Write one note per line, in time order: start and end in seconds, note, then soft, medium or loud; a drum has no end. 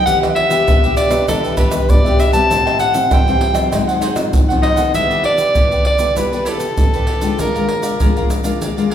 0.05 0.64 E3 medium
0.05 0.35 B3 medium
0.05 0.19 D4 medium
0.05 0.35 D4 medium
0.05 0.20 G4 soft
0.05 0.35 G4 medium
0.05 0.20 B4 soft
0.05 0.20 E5 medium
0.05 0.19 F#5 loud
0.05 pandeiro medium
0.05 shaker medium
0.05 surdo medium
0.21 0.35 G4 medium
0.21 0.35 B4 medium
0.21 0.35 E5 medium
0.21 pandeiro soft
0.21 tamborim medium
0.21 shaker soft
0.35 0.93 E5 loud
0.35 muted cavaquinho stroke soft
0.35 pandeiro medium
0.50 0.77 B3 medium
0.50 0.77 D4 medium
0.50 0.77 G4 medium
0.50 0.66 G4 medium
0.50 0.66 B4 medium
0.50 0.65 E5 medium
0.50 pandeiro medium
0.50 shaker medium
0.67 1.25 B2 medium
0.67 0.81 D4 medium
0.67 0.81 G4 soft
0.67 0.82 B4 medium
0.67 0.81 E5 medium
0.67 pandeiro medium
0.67 tamborim medium
0.67 shaker medium
0.67 surdo loud
0.83 1.09 B3 medium
0.83 1.09 D4 medium
0.83 1.11 G4 medium
0.83 1.09 G4 medium
0.83 1.10 B4 medium
0.83 1.09 E5 medium
0.83 pandeiro soft
0.83 shaker soft
0.97 1.26 D5 loud
0.97 pandeiro medium
0.97 shaker medium
1.10 1.23 B3 medium
1.10 1.23 D4 medium
1.10 1.27 G4 medium
1.10 1.23 G4 medium
1.10 1.26 B4 medium
1.10 1.26 E5 medium
1.10 pandeiro medium
1.10 tamborim medium
1.10 shaker medium
1.27 1.87 E3 medium
1.27 1.58 B3 soft
1.27 1.42 D4 medium
1.27 1.58 D4 medium
1.27 1.43 G4 soft
1.27 1.58 G4 medium
1.27 1.57 A4 medium
1.27 1.43 B4 medium
1.27 1.42 E5 medium
1.27 pandeiro medium
1.27 tamborim medium
1.27 shaker medium
1.27 surdo medium
1.44 1.56 G4 medium
1.44 1.57 B4 medium
1.44 1.58 E5 medium
1.44 pandeiro soft
1.44 shaker soft
1.57 1.71 D4 medium
1.57 1.71 G4 medium
1.57 1.91 B4 medium
1.57 1.71 B4 medium
1.57 1.72 E5 medium
1.57 pandeiro medium
1.57 shaker medium
1.57 surdo medium
1.71 1.99 B3 medium
1.71 1.99 D4 medium
1.71 1.99 G4 medium
1.71 muted cavaquinho stroke soft
1.71 pandeiro medium
1.71 tamborim medium
1.71 shaker medium
1.89 2.47 B2 medium
1.89 2.21 D5 loud
1.89 pandeiro medium
1.89 shaker medium
1.89 surdo loud
2.04 2.31 B3 medium
2.04 2.31 D4 medium
2.04 2.18 G4 medium
2.04 2.32 G4 medium
2.04 2.19 B4 medium
2.04 2.19 E5 medium
2.04 pandeiro soft
2.04 shaker soft
2.19 2.33 D4 soft
2.19 2.33 G4 soft
2.19 2.32 B4 medium
2.19 2.32 E5 medium
2.19 2.31 E5 soft
2.19 pandeiro medium
2.19 tamborim medium
2.19 shaker medium
2.32 2.91 G3 medium
2.32 2.91 C4 medium
2.32 2.91 E4 medium
2.32 2.49 G4 medium
2.32 2.48 B4 medium
2.32 2.48 E5 medium
2.32 2.77 A5 loud
2.32 pandeiro medium
2.32 shaker medium
2.50 3.09 A2 medium
2.50 2.64 A4 soft
2.50 2.65 C5 soft
2.50 2.65 E5 medium
2.50 2.64 G5 soft
2.50 pandeiro medium
2.50 shaker medium
2.50 surdo medium
2.65 2.79 C5 medium
2.65 2.80 E5 medium
2.65 2.80 G5 medium
2.65 pandeiro soft
2.65 tamborim medium
2.65 shaker soft
2.79 3.14 F#5 loud
2.79 muted cavaquinho stroke soft
2.79 pandeiro medium
2.79 shaker medium
2.93 3.21 G3 medium
2.93 3.21 C4 medium
2.93 3.21 E4 medium
2.93 3.10 C5 medium
2.93 3.09 E5 medium
2.93 3.09 G5 medium
2.93 pandeiro medium
2.93 shaker medium
3.11 3.70 E3 medium
3.11 3.25 A4 soft
3.11 3.26 C5 medium
3.11 3.26 E5 medium
3.11 3.73 G5 loud
3.11 3.26 G5 medium
3.11 pandeiro medium
3.11 tamborim medium
3.11 shaker medium
3.11 surdo loud
3.27 3.53 G3 medium
3.27 3.53 C4 medium
3.27 3.53 E4 medium
3.27 3.55 C5 soft
3.27 3.54 E5 medium
3.27 3.53 G5 medium
3.27 pandeiro soft
3.27 shaker soft
3.41 pandeiro medium
3.54 4.12 F#3 medium
3.54 4.12 C4 medium
3.54 4.12 F4 medium
3.54 3.71 C5 medium
3.54 3.70 E5 medium
3.54 3.70 G5 medium
3.54 pandeiro medium
3.54 tamborim medium
3.54 shaker medium
3.72 4.30 G#2 medium
3.72 3.86 D#4 soft
3.72 3.87 G#4 soft
3.72 3.87 C5 medium
3.72 3.86 F#5 medium
3.72 pandeiro medium
3.72 tamborim medium
3.72 shaker medium
3.72 surdo medium
3.87 4.01 G#4 medium
3.87 4.01 C5 medium
3.87 4.02 F#5 medium
3.87 pandeiro soft
3.87 shaker soft
4.01 4.14 D#4 medium
4.01 4.15 G#4 medium
4.01 4.15 C5 medium
4.01 4.15 F#5 medium
4.01 pandeiro medium
4.01 shaker medium
4.15 4.43 F#3 soft
4.15 4.43 C4 medium
4.15 4.43 F4 medium
4.15 muted cavaquinho stroke soft
4.15 pandeiro medium
4.15 tamborim medium
4.15 shaker medium
4.33 4.92 D#3 medium
4.33 pandeiro medium
4.33 shaker medium
4.33 surdo loud
4.49 4.75 F#3 medium
4.49 4.76 C4 medium
4.49 4.76 F4 medium
4.49 4.62 G#4 medium
4.49 4.62 C5 medium
4.49 4.63 F#5 medium
4.49 pandeiro soft
4.49 shaker soft
4.62 4.77 D#4 soft
4.62 4.77 G#4 soft
4.62 4.76 C5 soft
4.62 4.92 D#5 loud
4.62 4.75 F#5 medium
4.62 pandeiro medium
4.62 tamborim medium
4.76 5.09 B3 medium
4.76 5.10 E4 medium
4.76 4.93 G#4 medium
4.76 5.10 A4 medium
4.76 4.93 C5 medium
4.76 4.92 F#5 medium
4.76 pandeiro medium
4.76 shaker medium
4.94 5.53 G3 medium
4.94 5.08 E4 soft
4.94 5.09 G4 soft
4.94 5.09 B4 soft
4.94 5.09 D5 soft
4.94 5.23 E5 loud
4.94 pandeiro medium
4.94 shaker medium
4.94 surdo medium
5.10 5.51 B3 medium
5.10 5.52 E4 medium
5.10 5.23 G4 soft
5.10 5.52 A4 medium
5.10 5.23 B4 medium
5.10 5.23 D5 medium
5.10 pandeiro soft
5.10 shaker soft
5.24 5.82 D5 loud
5.24 muted cavaquinho stroke soft
5.24 pandeiro medium
5.37 5.54 G4 medium
5.37 5.54 B4 medium
5.37 5.53 D5 medium
5.37 pandeiro medium
5.37 shaker medium
5.55 6.14 D3 medium
5.55 5.97 B3 soft
5.55 5.69 E4 soft
5.55 5.97 E4 soft
5.55 5.70 G4 medium
5.55 5.97 A4 medium
5.55 5.70 B4 soft
5.55 5.70 D5 medium
5.55 pandeiro medium
5.55 shaker medium
5.55 surdo medium
5.71 5.99 G4 soft
5.71 5.98 B4 medium
5.71 5.97 D5 medium
5.71 pandeiro soft
5.71 shaker soft
5.85 6.15 D5 loud
5.85 pandeiro medium
5.98 6.26 B3 medium
5.98 6.27 E4 medium
5.98 6.15 G4 medium
5.98 6.27 A4 medium
5.98 6.15 B4 medium
5.98 6.14 D5 medium
5.98 pandeiro medium
5.98 shaker medium
6.16 6.75 G3 medium
6.16 6.30 E4 soft
6.16 6.31 G4 soft
6.16 6.50 B4 medium
6.16 6.31 B4 soft
6.16 6.31 D5 medium
6.16 pandeiro medium
6.16 shaker medium
6.16 surdo medium
6.32 6.74 B3 medium
6.32 6.74 E4 medium
6.32 6.44 G4 medium
6.32 6.74 A4 medium
6.32 6.45 B4 medium
6.32 6.46 D5 medium
6.32 pandeiro soft
6.32 shaker soft
6.45 6.58 E4 medium
6.45 6.58 G4 medium
6.45 7.40 A4 medium
6.45 6.59 B4 medium
6.45 6.59 D5 medium
6.45 pandeiro medium
6.45 shaker medium
6.59 muted cavaquinho stroke soft
6.59 pandeiro medium
6.59 shaker medium
6.77 7.36 D3 medium
6.77 7.19 B3 medium
6.77 7.19 E4 soft
6.77 7.20 A4 medium
6.77 pandeiro medium
6.77 shaker medium
6.77 surdo medium
6.93 7.07 G4 soft
6.93 7.08 B4 medium
6.93 7.08 D5 medium
6.93 pandeiro soft
6.93 shaker soft
7.07 7.22 E4 soft
7.07 7.22 G4 soft
7.07 7.21 B4 soft
7.07 7.20 D5 soft
7.07 pandeiro medium
7.21 7.48 G#3 medium
7.21 7.49 D4 medium
7.21 7.49 F4 medium
7.21 7.38 G4 medium
7.21 7.37 B4 medium
7.21 7.37 D5 medium
7.21 pandeiro medium
7.21 shaker medium
7.39 7.97 A#2 medium
7.39 7.53 G#4 soft
7.39 7.54 A#4 soft
7.39 8.28 A#4 medium
7.39 7.53 D5 soft
7.39 7.54 F5 medium
7.39 pandeiro medium
7.39 shaker medium
7.39 surdo medium
7.55 7.96 G#3 medium
7.55 7.96 D4 medium
7.55 7.96 F4 medium
7.55 7.68 A#4 medium
7.55 7.68 D5 medium
7.55 7.68 F5 medium
7.55 pandeiro soft
7.55 shaker soft
7.68 muted cavaquinho stroke soft
7.68 pandeiro medium
7.82 7.99 A#4 medium
7.82 7.98 D5 medium
7.82 7.99 F5 medium
7.82 pandeiro medium
7.82 shaker medium
8.00 8.59 F3 medium
8.00 8.42 G#3 soft
8.00 8.42 D4 medium
8.00 8.42 F4 medium
8.00 8.14 G#4 soft
8.00 8.15 A#4 soft
8.00 8.15 D5 medium
8.00 8.15 F5 soft
8.00 pandeiro medium
8.00 shaker medium
8.00 surdo medium
8.16 8.45 A#4 medium
8.16 8.42 D5 medium
8.16 8.43 F5 medium
8.16 pandeiro soft
8.16 shaker soft
8.30 pandeiro medium
8.30 shaker medium
8.44 8.71 G#3 medium
8.44 8.71 D4 medium
8.44 8.71 F4 medium
8.44 8.60 A#4 soft
8.44 8.59 D5 medium
8.44 8.60 F5 medium
8.44 pandeiro medium
8.44 shaker medium
8.61 8.95 A#2 medium
8.61 8.76 G#4 soft
8.61 8.76 A#4 soft
8.61 8.75 D5 medium
8.61 8.77 F5 soft
8.61 pandeiro medium
8.61 shaker medium
8.61 surdo soft
8.77 8.95 G#3 medium
8.77 8.95 D4 medium
8.77 8.95 F4 medium
8.77 8.90 A#4 medium
8.77 8.91 D5 medium
8.77 8.91 F5 medium
8.77 pandeiro soft
8.77 shaker soft
8.90 8.95 G#4 medium
8.90 8.95 A#4 medium
8.90 8.95 F5 medium
8.90 pandeiro medium